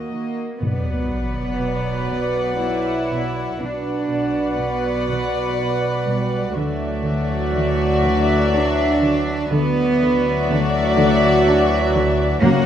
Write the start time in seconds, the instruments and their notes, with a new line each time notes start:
Already playing: viola section A#3, violin section F#4 D#5
0.12 cello section D#3 A#3
0.62 double bass section B1, cello section B2 B3, trombone section B2 F#3, timpani B2, french horn section F#4 D5, viola section B4, violin section D5 F#5, sub drop
1.11 cello section B2
1.60 cello section B2
2.10 cello section B2
2.61 cello section B3 E4
3.11 cello section B2
3.60 double bass section B1, cello section B2 D4, trombone section B2 F#4, french horn section F#4 D5, viola section B4, violin section D5 F#5
4.09 cello section B2
4.59 cello section B2 B3
5.09 cello section B2
5.58 cello section B3
6.07 cello section B2 G3
6.55 double bass section D2, cello section D3 A3, trombone section E3 F#3, viola section F#4, french horn section F#4 D5, violin section D5 E5
7.04 cello section D3
7.54 cello section D3
8.04 cello section D3
8.54 cello section D4
9.03 cello section D3
9.51 double bass section D2, cello section D3 B3, trombone section E3 F#3, french horn section F#4 D5, viola section F#4, violin section D5 E5
10.01 cello section D3
10.49 cello section D3 A3
10.98 cello section D3
11.46 cello section D4
11.94 cello section D3
12.41 cello section F#2 A#3, timpani F#2, double bass section F#2, trombone section C#3 F#3, french horn section F#4 C#5, viola section F#4, violin section C#5 F#5